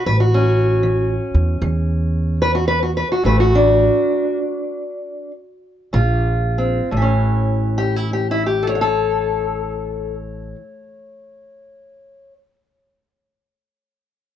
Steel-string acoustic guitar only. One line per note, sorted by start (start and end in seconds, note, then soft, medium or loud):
0.06 0.78 A2 medium
0.06 0.20 B4 medium
0.20 1.08 F#4 medium
0.34 2.70 C#4 medium
0.83 1.56 E3 medium
1.62 2.36 E3 medium
2.42 3.18 E3 medium
2.42 2.54 B4 medium
2.55 2.67 F#4 medium
2.68 2.82 B4 medium
2.83 2.90 F#4 medium
2.97 3.11 B4 medium
3.12 3.23 F#4 medium
3.23 3.97 A2 medium
3.23 3.80 E3 soft
3.23 3.53 A3 soft
3.23 3.39 F#4 soft
3.23 3.40 B4 medium
3.40 4.37 F#4 medium
3.55 5.31 D4 medium
5.93 6.85 A#2 medium
5.93 6.88 F4 medium
6.58 6.88 C4 medium
6.91 10.55 A2 medium
6.97 10.61 E3 medium
7.02 8.62 C#4 medium
7.78 7.96 G4 medium
7.96 8.13 E4 medium
8.13 8.31 G4 medium
8.31 8.46 E4 medium
8.46 8.67 G4 medium
8.63 8.80 A4 medium
8.69 12.33 C#5 medium
8.75 8.81 F#5 medium
8.81 10.14 A4 medium